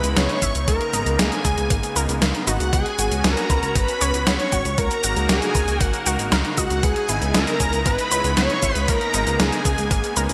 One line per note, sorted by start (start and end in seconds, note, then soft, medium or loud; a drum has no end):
0.00 0.15 C#2 medium
0.00 0.66 C#3 medium
0.00 2.69 G#3 medium
0.00 4.74 B3 medium
0.00 2.69 D#4 medium
0.00 0.66 E4 loud
0.00 0.18 B4 loud
0.00 0.13 B5 loud
0.00 closed hi-hat soft
0.00 cabasa soft
0.16 0.28 C#2 loud
0.16 0.32 B3 medium
0.16 0.67 C#5 loud
0.16 0.64 C#6 loud
0.16 snare loud
0.16 closed hi-hat medium
0.16 cabasa soft
0.29 closed hi-hat soft
0.42 0.53 G#1 medium
0.42 0.66 E4 loud
0.42 kick medium
0.42 closed hi-hat medium
0.42 cabasa medium
0.55 0.66 C#2 medium
0.55 closed hi-hat soft
0.55 cabasa soft
0.68 0.79 C#2 loud
0.68 2.71 C#3 medium
0.68 2.71 A#3 medium
0.68 0.84 A#3 medium
0.68 1.21 A#4 loud
0.68 1.15 A#5 loud
0.68 kick loud
0.68 closed hi-hat loud
0.68 cabasa soft
0.81 closed hi-hat soft
0.93 1.05 G#1 medium
0.93 1.09 D#4 medium
0.93 closed hi-hat medium
0.93 cabasa medium
1.06 1.17 C#2 medium
1.06 closed hi-hat soft
1.06 cabasa soft
1.19 1.30 C#2 loud
1.19 1.35 A#3 medium
1.19 1.96 G#4 medium
1.19 1.92 G#5 medium
1.19 snare loud
1.19 closed hi-hat loud
1.19 cabasa soft
1.32 closed hi-hat soft
1.32 cabasa soft
1.45 1.56 C#2 loud
1.45 1.60 G#4 loud
1.45 kick loud
1.45 closed hi-hat medium
1.45 cabasa medium
1.57 1.69 C#2 medium
1.57 closed hi-hat soft
1.57 cabasa soft
1.70 1.82 G#1 loud
1.70 1.86 A#3 medium
1.70 kick loud
1.70 closed hi-hat loud
1.70 cabasa soft
1.83 closed hi-hat soft
1.83 cabasa soft
1.96 2.07 C#2 medium
1.96 2.05 A#4 loud
1.96 closed hi-hat soft
1.96 cabasa medium
2.09 2.20 C#2 medium
2.09 closed hi-hat soft
2.09 cabasa soft
2.22 2.33 C#2 loud
2.22 2.37 A#3 medium
2.22 snare loud
2.22 closed hi-hat loud
2.22 cabasa soft
2.35 closed hi-hat soft
2.47 2.59 G#1 medium
2.47 2.71 D#4 loud
2.47 2.71 F#4 medium
2.47 2.71 F#5 medium
2.47 closed hi-hat medium
2.47 cabasa medium
2.60 2.71 C#2 medium
2.60 closed hi-hat soft
2.60 cabasa soft
2.73 2.84 C#2 loud
2.73 2.89 B3 medium
2.73 4.76 C#4 medium
2.73 4.76 F#4 medium
2.73 3.21 G#4 loud
2.73 3.21 G#5 loud
2.73 kick loud
2.73 closed hi-hat loud
2.73 cabasa soft
2.86 closed hi-hat soft
2.99 3.10 G#1 medium
2.99 3.14 F#4 medium
2.99 closed hi-hat medium
2.99 cabasa medium
3.11 3.23 C#2 medium
3.11 closed hi-hat soft
3.11 cabasa soft
3.24 3.36 C#2 loud
3.24 3.40 B3 medium
3.24 3.77 A#4 loud
3.24 3.72 A#5 loud
3.24 snare loud
3.24 closed hi-hat loud
3.24 cabasa soft
3.37 closed hi-hat soft
3.37 cabasa soft
3.50 3.61 C#2 loud
3.50 3.66 B4 loud
3.50 kick loud
3.50 closed hi-hat medium
3.50 cabasa medium
3.63 3.74 C#2 medium
3.63 closed hi-hat soft
3.63 cabasa soft
3.75 3.87 G#1 loud
3.75 3.91 B3 medium
3.75 4.28 B4 loud
3.75 4.23 B5 loud
3.75 kick loud
3.75 closed hi-hat loud
3.75 cabasa soft
3.88 closed hi-hat soft
3.88 cabasa soft
4.01 4.12 C#2 medium
4.01 4.11 C#5 loud
4.01 closed hi-hat soft
4.01 cabasa medium
4.14 4.25 C#2 medium
4.14 closed hi-hat soft
4.14 cabasa soft
4.27 4.38 C#2 loud
4.27 4.42 B3 medium
4.27 4.80 C#5 loud
4.27 4.75 C#6 loud
4.27 snare loud
4.27 closed hi-hat loud
4.27 cabasa soft
4.40 closed hi-hat soft
4.52 4.64 G#1 loud
4.52 4.76 F#4 loud
4.52 kick medium
4.52 closed hi-hat medium
4.52 cabasa medium
4.65 4.76 C#2 medium
4.65 closed hi-hat soft
4.65 cabasa soft
4.78 4.89 C#2 loud
4.78 10.33 C#3 medium
4.78 4.94 A#3 medium
4.78 6.81 A#3 medium
4.78 10.33 D#4 medium
4.78 6.81 F#4 medium
4.78 5.29 A#4 loud
4.78 6.81 A#4 medium
4.78 5.26 A#5 loud
4.78 kick loud
4.78 closed hi-hat medium
4.78 cabasa soft
4.91 closed hi-hat soft
4.91 cabasa soft
5.04 5.15 G#1 loud
5.04 5.19 F#4 medium
5.04 closed hi-hat medium
5.04 cabasa medium
5.16 5.28 C#2 medium
5.16 closed hi-hat soft
5.16 cabasa soft
5.29 5.41 C#2 loud
5.29 5.45 A#3 medium
5.29 5.83 G#4 medium
5.29 5.83 G#5 medium
5.29 snare loud
5.29 closed hi-hat medium
5.29 cabasa soft
5.42 closed hi-hat soft
5.42 cabasa soft
5.55 5.66 C#2 loud
5.55 5.71 A#4 loud
5.55 kick loud
5.55 closed hi-hat medium
5.55 cabasa medium
5.68 5.79 C#2 medium
5.68 closed hi-hat soft
5.68 cabasa soft
5.81 5.92 G#1 loud
5.81 5.96 A#3 medium
5.81 6.02 F#4 medium
5.81 6.02 F#5 medium
5.81 kick loud
5.81 closed hi-hat loud
5.81 cabasa soft
5.93 closed hi-hat soft
5.93 cabasa soft
6.06 6.17 C#2 medium
6.06 6.22 F#4 loud
6.06 closed hi-hat soft
6.06 cabasa medium
6.19 6.30 G#1 medium
6.19 closed hi-hat soft
6.19 cabasa soft
6.32 6.43 C#2 loud
6.32 6.48 A#4 loud
6.32 snare loud
6.32 closed hi-hat medium
6.32 cabasa soft
6.45 closed hi-hat soft
6.57 6.69 C#2 medium
6.57 6.85 F#4 medium
6.57 6.73 D#5 medium
6.57 6.81 F#5 medium
6.57 kick medium
6.57 closed hi-hat medium
6.57 cabasa medium
6.70 6.82 C#2 medium
6.70 closed hi-hat soft
6.70 cabasa soft
6.83 6.94 C#2 loud
6.83 10.33 G#3 medium
6.83 10.33 B3 medium
6.83 6.99 B3 medium
6.83 8.86 E4 medium
6.83 7.34 G#4 loud
6.83 7.31 G#5 loud
6.83 kick loud
6.83 closed hi-hat medium
6.83 cabasa soft
6.96 closed hi-hat soft
7.09 7.20 G#1 medium
7.09 7.25 E4 medium
7.09 closed hi-hat medium
7.09 cabasa medium
7.22 7.33 C#2 medium
7.22 closed hi-hat soft
7.22 cabasa soft
7.34 7.46 C#2 loud
7.34 7.50 B3 medium
7.34 7.82 A#4 loud
7.34 7.82 A#5 loud
7.34 snare loud
7.34 closed hi-hat medium
7.34 cabasa soft
7.47 closed hi-hat soft
7.47 cabasa soft
7.60 7.71 C#2 medium
7.60 7.76 G#4 loud
7.60 kick loud
7.60 closed hi-hat medium
7.60 cabasa medium
7.73 7.84 C#2 medium
7.73 closed hi-hat soft
7.73 cabasa soft
7.86 7.97 G#1 loud
7.86 8.02 B3 medium
7.86 8.33 B4 loud
7.86 8.33 B5 loud
7.86 kick loud
7.86 closed hi-hat medium
7.86 cabasa soft
7.99 closed hi-hat soft
7.99 cabasa soft
8.11 8.23 C#2 loud
8.11 8.21 B4 loud
8.11 closed hi-hat soft
8.11 cabasa medium
8.24 8.35 C#2 medium
8.24 closed hi-hat soft
8.24 cabasa soft
8.37 8.48 C#2 loud
8.37 8.53 B3 medium
8.37 8.75 C#5 loud
8.37 8.85 C#6 loud
8.37 snare loud
8.37 closed hi-hat medium
8.37 cabasa soft
8.50 closed hi-hat soft
8.63 8.74 G#1 medium
8.63 8.86 E4 loud
8.63 kick medium
8.63 closed hi-hat medium
8.63 cabasa medium
8.75 8.87 C#2 medium
8.75 8.90 B4 loud
8.75 closed hi-hat soft
8.75 cabasa soft
8.88 9.00 C#2 loud
8.88 10.33 A#3 medium
8.88 9.04 A#3 medium
8.88 9.41 A#4 loud
8.88 9.36 A#5 loud
8.88 kick loud
8.88 closed hi-hat medium
8.88 cabasa soft
9.01 closed hi-hat soft
9.14 9.25 G#1 loud
9.14 9.30 D#4 medium
9.14 closed hi-hat medium
9.14 cabasa medium
9.27 9.38 C#2 medium
9.27 closed hi-hat soft
9.27 cabasa soft
9.39 9.51 C#2 loud
9.39 9.55 A#3 medium
9.39 10.16 G#4 medium
9.39 10.12 G#5 medium
9.39 snare loud
9.39 closed hi-hat medium
9.39 cabasa soft
9.52 closed hi-hat soft
9.52 cabasa soft
9.65 9.77 C#2 loud
9.65 9.81 G#4 loud
9.65 kick loud
9.65 closed hi-hat medium
9.65 cabasa medium
9.78 9.89 C#2 medium
9.78 closed hi-hat soft
9.78 cabasa soft
9.91 10.02 G#1 loud
9.91 10.07 A#3 medium
9.91 kick loud
9.91 closed hi-hat medium
9.91 cabasa soft
10.04 closed hi-hat soft
10.04 cabasa soft
10.16 10.28 C#2 medium
10.16 10.26 A#4 loud
10.16 closed hi-hat soft
10.16 cabasa medium
10.29 10.33 C#2 medium
10.29 closed hi-hat soft
10.29 cabasa soft